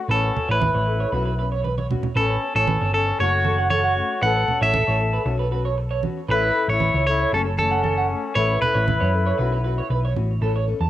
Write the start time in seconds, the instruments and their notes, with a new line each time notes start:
0.09 picked electric bass A1, nylon-string guitar E3 B3 C#4 A4, clean electric guitar A4 B4, muted conga
0.13 trumpet C#4
0.23 clean electric guitar B4
0.36 nylon-string guitar B3 C#4 A4, muted conga, low conga
0.49 picked electric bass A1, trumpet E4, clean electric guitar B4 C#5
0.60 clean electric guitar B4, high conga, low conga
0.75 picked electric bass A1, clean electric guitar C#5
0.86 nylon-string guitar B3 C#4 A4
1.00 clean electric guitar C#5
1.12 picked electric bass B1, nylon-string guitar F#3 B3 C#4 F#4, clean electric guitar B4, muted conga
1.25 clean electric guitar B4
1.39 nylon-string guitar B3 C#4, clean electric guitar B4
1.52 clean electric guitar C#5
1.64 clean electric guitar B4, high conga
1.78 clean electric guitar C#5, high conga
1.91 nylon-string guitar B3 C#4 F#4, low conga
2.03 low conga
2.15 picked electric bass A1, nylon-string guitar E3 B3 C#4 A4, trumpet C#4, clean electric guitar A4 B4, muted conga
2.30 clean electric guitar B4
2.42 nylon-string guitar B3 C#4, muted nylon-string guitar stroke
2.55 picked electric bass A1, trumpet C#4, clean electric guitar A4 C#5
2.67 clean electric guitar B4, high conga
2.81 picked electric bass G1, clean electric guitar C#5
2.93 nylon-string guitar B3 C#4 A4, trumpet C#4, clean electric guitar A4
3.07 muted clean electric guitar stroke
3.18 picked electric bass F#1, nylon-string guitar F#3 A3 C#4 G#4, trumpet F#4, clean electric guitar A4 C#5, muted conga
3.45 nylon-string guitar A3 C#4 G#4, clean electric guitar A4, high conga
3.58 clean electric guitar F#5
3.70 clean electric guitar A4 C#5, high conga
3.75 trumpet F#4
3.84 clean electric guitar F#5
3.96 nylon-string guitar A3 C#4 G#4, muted conga
4.22 picked electric bass A1, nylon-string guitar E3 B3 C#4 A4, trumpet A4, clean electric guitar B4 F#5, muted conga
4.36 clean electric guitar B4
4.48 nylon-string guitar B3 C#4 A4, muted conga, low conga
4.61 picked electric bass A1, clean electric guitar C#5 E5
4.66 trumpet A4
4.74 clean electric guitar A4, high conga, low conga
4.87 picked electric bass A1, clean electric guitar C#5
4.99 nylon-string guitar B3 C#4 A4
5.13 clean electric guitar B4
5.26 picked electric bass B1, nylon-string guitar F#3 B3 C#4 F#4, muted clean electric guitar stroke, muted conga
5.39 clean electric guitar B4
5.51 nylon-string guitar B3 C#4 F#4, clean electric guitar B4
5.65 clean electric guitar C#5
5.78 muted clean electric guitar stroke
5.91 clean electric guitar C#5
6.03 nylon-string guitar B3 C#4 F#4, muted conga, high conga
6.28 picked electric bass A1, nylon-string guitar E3 B3 C#4 A4, trumpet E4, clean electric guitar B4, muted conga
6.42 clean electric guitar B4
6.55 nylon-string guitar B3 C#4 A4
6.68 picked electric bass A1, trumpet E4, clean electric guitar C#5
6.80 clean electric guitar B4, high conga
6.94 picked electric bass C#2, clean electric guitar C#5
7.06 nylon-string guitar B3 C#4 A4, trumpet E4, clean electric guitar C#5
7.20 clean electric guitar C#5
7.32 picked electric bass F#1, nylon-string guitar F#3 A3 C#4 G#4, trumpet C#4, clean electric guitar A4, muted clean electric guitar stroke, muted conga
7.45 clean electric guitar A4
7.57 nylon-string guitar A3 C#4 G#4, trumpet C#4, clean electric guitar A4, high conga
7.71 clean electric guitar F#5
7.83 clean electric guitar A4, high conga
7.97 clean electric guitar F#5
8.09 nylon-string guitar A3 C#4 G#4, muted conga
8.35 picked electric bass A1, nylon-string guitar E3 B3 C#4 A4, trumpet E4, clean electric guitar B4 C#5, muted conga
8.49 clean electric guitar B4
8.62 nylon-string guitar B3 C#4 A4, trumpet E4, clean electric guitar B4, muted conga, low conga
8.74 picked electric bass A1, clean electric guitar C#5
8.86 clean electric guitar B4, high conga, low conga
9.00 picked electric bass F#2, clean electric guitar C#5
9.13 nylon-string guitar B3 C#4 A4
9.26 clean electric guitar C#5
9.38 picked electric bass B1, nylon-string guitar F#3 C#4 F#4, clean electric guitar B4, muted nylon-string guitar stroke, muted conga
9.52 clean electric guitar B4
9.64 nylon-string guitar B3 C#4 F#4, clean electric guitar B4
9.78 clean electric guitar C#5
9.90 picked electric bass B1, clean electric guitar B4
10.05 clean electric guitar C#5
10.16 picked electric bass A1, nylon-string guitar B3 C#4 F#4, muted conga, high conga
10.41 picked electric bass A1, nylon-string guitar E3 B3 C#4 A4, clean electric guitar A4, muted conga
10.56 clean electric guitar C#5
10.68 nylon-string guitar B3 C#4 A4, muted conga
10.80 picked electric bass E2, clean electric guitar A5